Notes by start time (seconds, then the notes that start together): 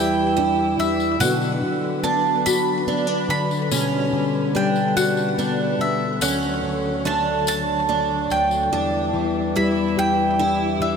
Already playing: E2 E3 G3 D4 E4 G4 D5 G5
0.37 D4 E4
0.78 E3 E5, tambourine
1.00 tambourine
1.19 B2 D3 F#3 B3 D4 F#4 B4 F#5, tambourine
1.42 tambourine
1.62 D3
2.03 B3 D4 A5
2.46 F#4 B5, tambourine
2.87 B3 D4
3.07 D4
3.29 D3 B5, tambourine
3.51 tambourine
3.71 B2 G3 C#4, tambourine
4.13 D3
4.55 G3 D4 G5
4.76 tambourine
4.96 F#4 F#5, tambourine
5.17 tambourine
5.38 B3 D4, tambourine
5.79 D3 E5
6.20 D2 D3 F#3 C#4 C#5 F#5, tambourine
6.43 tambourine
6.63 D3
7.05 A3 D4 A5
7.47 A5, tambourine
7.89 D4
8.30 D2 G5, tambourine
8.51 tambourine
8.71 E2 G3 D4 E4 D5
9.13 E3
9.56 G3 E4 B5
9.97 G4 G5
10.39 D4 E4
10.80 E3 E5